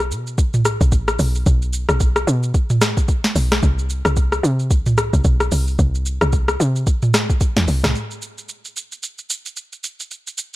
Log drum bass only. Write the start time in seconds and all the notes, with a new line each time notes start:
Already playing: B1
0.11 B2
0.38 B1
0.81 B1
0.92 A1
1.19 B1
1.46 B1
1.89 B1
2.27 B2
3.36 B1
3.63 C2
4.05 C2
4.43 C3
4.71 C2
5.13 C2
5.25 B1
5.52 C2
5.79 C2
6.22 C2
6.60 C3
7.57 E2
7.68 C2
7.84 C2